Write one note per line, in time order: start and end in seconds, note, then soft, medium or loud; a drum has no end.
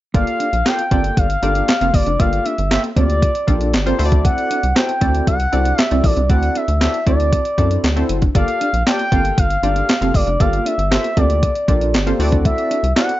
0.14 0.24 G1 loud
0.14 0.24 A#3 medium
0.14 0.49 A#3 medium
0.14 0.49 F4 medium
0.14 0.49 G4 medium
0.14 0.50 A4 medium
0.14 0.50 D5 medium
0.14 0.68 F5 loud
0.14 kick loud
0.14 closed hi-hat medium
0.27 closed hi-hat medium
0.40 0.49 D4 medium
0.40 closed hi-hat medium
0.53 0.63 A#1 medium
0.53 muted clean electric guitar stroke soft
0.53 closed hi-hat medium
0.65 0.83 A#3 medium
0.65 0.83 F4 medium
0.65 0.83 G4 medium
0.65 0.83 A4 medium
0.65 0.83 F5 medium
0.65 1.20 G5 loud
0.65 snare loud
0.65 clap medium
0.65 closed hi-hat medium
0.79 closed hi-hat medium
0.91 1.11 G1 medium
0.91 1.26 A#3 medium
0.91 1.01 C4 medium
0.91 1.26 F4 medium
0.91 1.26 G4 medium
0.91 1.26 A4 medium
0.91 1.27 D5 medium
0.91 kick loud
0.91 closed hi-hat medium
1.04 closed hi-hat medium
1.17 1.37 G1 loud
1.17 1.96 F5 loud
1.17 muted clean electric guitar stroke soft
1.17 kick loud
1.17 closed hi-hat loud
1.30 closed hi-hat medium
1.42 1.62 G1 loud
1.42 1.69 A#3 medium
1.42 1.52 D4 medium
1.42 1.69 F4 medium
1.42 1.69 G4 medium
1.42 1.69 A4 medium
1.42 1.69 D5 medium
1.42 closed hi-hat medium
1.55 1.65 D4 medium
1.55 closed hi-hat medium
1.68 snare loud
1.68 clap medium
1.68 closed hi-hat medium
1.81 1.91 F1 medium
1.81 2.07 A#3 medium
1.81 1.91 C4 medium
1.81 2.07 F4 medium
1.81 2.07 G4 medium
1.81 2.08 A4 medium
1.81 2.08 F5 medium
1.81 closed hi-hat medium
1.94 2.04 G1 medium
1.94 2.21 D5 medium
1.94 kick loud
1.94 open hi-hat medium
2.07 2.17 F1 loud
2.07 2.16 D4 medium
2.07 closed hi-hat medium
2.19 2.39 G1 loud
2.19 2.54 A#3 medium
2.19 2.29 A#3 medium
2.19 2.55 F4 medium
2.19 2.55 G4 medium
2.19 2.55 A4 medium
2.19 2.55 D5 medium
2.19 2.47 F5 loud
2.19 kick loud
2.19 closed hi-hat medium
2.33 closed hi-hat medium
2.45 2.55 D4 medium
2.45 2.70 E5 medium
2.45 closed hi-hat medium
2.58 2.78 G1 loud
2.58 muted clean electric guitar stroke soft
2.58 closed hi-hat medium
2.71 2.88 A#3 medium
2.71 2.88 F4 medium
2.71 2.88 G4 medium
2.71 2.89 A4 medium
2.71 2.82 E5 medium
2.71 2.89 E5 medium
2.71 snare loud
2.71 clap medium
2.71 closed hi-hat medium
2.84 closed hi-hat medium
2.96 3.26 D2 loud
2.96 3.31 A#3 medium
2.96 3.06 C4 medium
2.96 3.31 F4 medium
2.96 3.31 G4 medium
2.96 3.32 A4 medium
2.96 3.95 D5 medium
2.96 3.32 D5 medium
2.96 kick loud
2.96 closed hi-hat medium
3.10 closed hi-hat medium
3.22 muted clean electric guitar stroke soft
3.22 kick loud
3.22 closed hi-hat medium
3.35 closed hi-hat medium
3.47 3.75 A#1 loud
3.47 3.74 A#3 medium
3.47 3.57 D4 medium
3.47 3.74 F4 medium
3.47 3.74 G4 medium
3.47 3.74 A4 medium
3.47 3.74 D5 medium
3.47 kick loud
3.47 closed hi-hat medium
3.61 3.70 D4 medium
3.61 closed hi-hat medium
3.74 3.93 G1 loud
3.74 snare loud
3.74 clap medium
3.74 closed hi-hat medium
3.86 3.99 A#3 medium
3.86 3.96 C4 medium
3.86 3.99 F4 medium
3.86 3.99 G4 medium
3.86 3.98 A4 medium
3.86 3.98 C5 medium
3.86 closed hi-hat medium
3.98 4.29 D2 loud
3.98 4.60 C4 medium
3.98 4.60 E4 medium
3.98 4.60 F#4 medium
3.98 4.60 A4 medium
3.98 4.05 C5 medium
3.98 muted clean electric guitar stroke soft
3.98 open hi-hat medium
4.05 4.64 D5 loud
4.12 4.21 D4 medium
4.12 kick loud
4.12 closed hi-hat medium
4.24 4.34 A3 medium
4.24 4.78 F#5 loud
4.24 kick loud
4.24 closed hi-hat medium
4.38 closed hi-hat medium
4.50 4.60 D4 medium
4.50 closed hi-hat medium
4.63 4.73 C2 medium
4.63 closed hi-hat medium
4.75 4.93 C4 medium
4.75 4.93 E4 medium
4.75 4.93 F#4 medium
4.75 4.93 A4 medium
4.75 4.94 C5 medium
4.75 5.27 G5 loud
4.75 snare loud
4.75 clap medium
4.75 closed hi-hat medium
4.89 closed hi-hat medium
5.01 5.21 D2 medium
5.01 5.36 C4 medium
5.01 5.11 C4 medium
5.01 5.36 E4 medium
5.01 5.36 F#4 medium
5.01 5.36 A4 medium
5.01 5.37 D5 medium
5.01 kick loud
5.01 closed hi-hat medium
5.15 closed hi-hat medium
5.27 5.47 C2 loud
5.27 5.81 F#5 loud
5.27 muted clean electric guitar stroke soft
5.27 kick loud
5.27 closed hi-hat loud
5.40 closed hi-hat medium
5.52 5.73 C2 medium
5.52 5.79 C4 medium
5.52 5.62 D4 medium
5.52 5.79 E4 medium
5.52 5.79 F#4 medium
5.52 5.79 A4 medium
5.52 5.79 D5 medium
5.52 closed hi-hat medium
5.65 5.75 D4 medium
5.65 closed hi-hat medium
5.78 6.06 E5 loud
5.78 snare loud
5.78 clap loud
5.78 closed hi-hat medium
5.91 6.01 C2 medium
5.91 6.17 C4 medium
5.91 6.01 C4 medium
5.91 6.17 E4 medium
5.91 6.17 F#4 medium
5.91 6.18 A4 medium
5.91 6.18 D5 medium
5.91 closed hi-hat medium
6.04 6.14 A#1 loud
6.04 6.30 D5 medium
6.04 kick medium
6.04 open hi-hat medium
6.17 6.31 C2 loud
6.17 6.27 D4 medium
6.17 closed hi-hat medium
6.29 6.49 D2 loud
6.29 6.40 A3 medium
6.29 6.64 C4 medium
6.29 6.65 E4 medium
6.29 6.65 F#4 medium
6.29 6.65 A4 medium
6.29 6.65 D5 medium
6.29 6.58 F#5 loud
6.29 kick loud
6.29 closed hi-hat medium
6.43 closed hi-hat medium
6.55 6.65 D4 medium
6.55 6.82 E5 medium
6.55 closed hi-hat medium
6.68 6.88 D2 loud
6.68 muted clean electric guitar stroke soft
6.68 closed hi-hat medium
6.81 6.98 C4 medium
6.81 6.98 E4 medium
6.81 6.99 F#4 medium
6.81 6.99 A4 medium
6.81 6.99 D5 medium
6.81 7.05 E5 medium
6.81 snare loud
6.81 clap medium
6.81 closed hi-hat medium
6.94 closed hi-hat medium
7.06 7.36 D2 medium
7.06 7.41 C4 medium
7.06 7.16 C4 medium
7.06 7.42 E4 medium
7.06 7.42 F#4 medium
7.06 7.42 A4 medium
7.06 7.42 D5 medium
7.06 8.06 D5 medium
7.06 kick loud
7.06 closed hi-hat medium
7.20 closed hi-hat soft
7.33 muted clean electric guitar stroke soft
7.33 kick loud
7.33 closed hi-hat loud
7.45 closed hi-hat medium
7.58 7.78 F#2 medium
7.58 7.84 C4 medium
7.58 7.68 D4 medium
7.58 7.84 E4 medium
7.58 7.84 F#4 medium
7.58 7.84 A4 medium
7.58 7.85 D5 medium
7.58 kick medium
7.58 closed hi-hat medium
7.71 7.80 D4 medium
7.71 closed hi-hat medium
7.84 8.03 D2 medium
7.84 snare loud
7.84 clap loud
7.84 closed hi-hat medium
7.96 8.23 C4 medium
7.96 8.06 C4 medium
7.96 8.23 E4 medium
7.96 8.23 F#4 medium
7.96 8.23 A4 medium
7.96 8.23 C5 medium
7.96 closed hi-hat medium
8.09 8.29 F#1 medium
8.09 muted clean electric guitar stroke soft
8.09 closed hi-hat medium
8.22 8.32 D4 medium
8.22 kick loud
8.22 closed hi-hat medium
8.35 8.45 G1 loud
8.35 8.70 A#3 medium
8.35 8.44 A#3 medium
8.35 8.70 F4 medium
8.35 8.70 G4 medium
8.35 8.70 A4 medium
8.35 8.70 D5 medium
8.35 8.83 F5 loud
8.35 kick loud
8.35 closed hi-hat medium
8.48 closed hi-hat medium
8.61 8.70 D4 medium
8.61 closed hi-hat medium
8.73 8.83 A#1 medium
8.73 muted clean electric guitar stroke soft
8.73 closed hi-hat medium
8.86 9.04 A#3 medium
8.86 9.04 F4 medium
8.86 9.04 G4 medium
8.86 9.04 A4 medium
8.86 9.04 D5 medium
8.86 9.40 G5 loud
8.86 snare loud
8.86 clap medium
8.86 closed hi-hat medium
8.99 closed hi-hat medium
9.12 9.32 G1 medium
9.12 9.47 A#3 medium
9.12 9.21 C4 medium
9.12 9.47 F4 medium
9.12 9.47 G4 medium
9.12 9.47 A4 medium
9.12 9.47 F5 medium
9.12 kick loud
9.12 closed hi-hat medium
9.25 closed hi-hat medium
9.38 9.57 G1 medium
9.38 10.17 F5 loud
9.38 muted clean electric guitar stroke soft
9.38 kick loud
9.38 closed hi-hat loud
9.50 closed hi-hat medium
9.63 9.83 G1 medium
9.63 9.89 A#3 medium
9.63 9.73 D4 medium
9.63 9.89 F4 medium
9.63 9.89 G4 medium
9.63 9.90 A4 medium
9.63 9.90 D5 medium
9.63 closed hi-hat medium
9.76 9.85 D4 medium
9.76 closed hi-hat medium
9.89 snare loud
9.89 clap medium
9.89 closed hi-hat medium
10.01 10.11 F1 medium
10.01 10.28 A#3 medium
10.01 10.11 C4 medium
10.01 10.28 F4 medium
10.01 10.28 G4 medium
10.01 10.28 A4 medium
10.01 10.28 F5 medium
10.01 closed hi-hat medium
10.14 10.24 G1 medium
10.14 10.42 D5 loud
10.14 muted clean electric guitar stroke soft
10.14 kick medium
10.14 open hi-hat medium
10.27 10.37 F1 loud
10.27 10.37 D4 medium
10.27 closed hi-hat soft
10.40 10.60 G1 loud
10.40 10.75 A#3 medium
10.40 10.50 A#3 medium
10.40 10.75 F4 medium
10.40 10.75 G4 medium
10.40 10.75 A4 medium
10.40 10.75 D5 medium
10.40 10.68 F5 loud
10.40 kick loud
10.40 closed hi-hat medium
10.53 closed hi-hat soft
10.66 10.75 D4 medium
10.66 10.92 E5 medium
10.66 closed hi-hat medium
10.78 10.98 G1 loud
10.78 muted clean electric guitar stroke soft
10.78 closed hi-hat medium
10.91 11.09 A#3 medium
10.91 11.09 F4 medium
10.91 11.09 G4 medium
10.91 11.09 A4 medium
10.91 11.09 C5 medium
10.91 11.20 E5 medium
10.91 snare loud
10.91 clap medium
10.91 closed hi-hat loud
11.04 closed hi-hat medium
11.16 11.47 D2 medium
11.16 11.52 A#3 medium
11.16 11.26 C4 medium
11.16 11.52 F4 medium
11.16 11.52 G4 medium
11.16 11.52 A4 medium
11.16 11.52 D5 medium
11.16 12.20 D5 medium
11.16 kick loud
11.16 closed hi-hat medium
11.30 closed hi-hat medium
11.43 muted clean electric guitar stroke soft
11.43 kick loud
11.43 closed hi-hat loud
11.55 closed hi-hat medium
11.68 11.95 A#1 medium
11.68 11.94 A#3 medium
11.68 11.78 D4 medium
11.68 11.94 F4 medium
11.68 11.94 G4 medium
11.68 11.95 A4 medium
11.68 11.95 D5 medium
11.68 kick loud
11.68 closed hi-hat medium
11.81 11.90 D4 medium
11.81 closed hi-hat medium
11.94 12.13 G1 medium
11.94 snare loud
11.94 clap loud
11.94 closed hi-hat medium
12.06 12.19 A#3 medium
12.06 12.16 C4 medium
12.06 12.19 F4 medium
12.06 12.20 G4 medium
12.06 12.19 A4 medium
12.06 12.20 C5 medium
12.06 closed hi-hat medium
12.19 12.49 D2 loud
12.19 12.81 C4 loud
12.19 12.81 E4 medium
12.19 12.81 F#4 medium
12.19 12.81 A4 loud
12.19 12.81 D5 loud
12.19 muted clean electric guitar stroke soft
12.19 open hi-hat medium
12.32 12.42 D4 medium
12.32 kick loud
12.32 closed hi-hat medium
12.45 12.54 A3 medium
12.45 12.93 E5 loud
12.45 kick loud
12.45 closed hi-hat medium
12.58 closed hi-hat medium
12.71 12.80 D4 medium
12.71 closed hi-hat medium
12.83 12.93 C2 loud
12.83 muted clean electric guitar stroke soft
12.83 closed hi-hat medium
12.96 13.14 C4 medium
12.96 13.14 E4 medium
12.96 13.14 F#4 medium
12.96 13.14 A4 medium
12.96 13.14 D5 medium
12.96 13.20 F#5 loud
12.96 snare loud
12.96 clap medium
12.96 closed hi-hat medium
13.09 closed hi-hat medium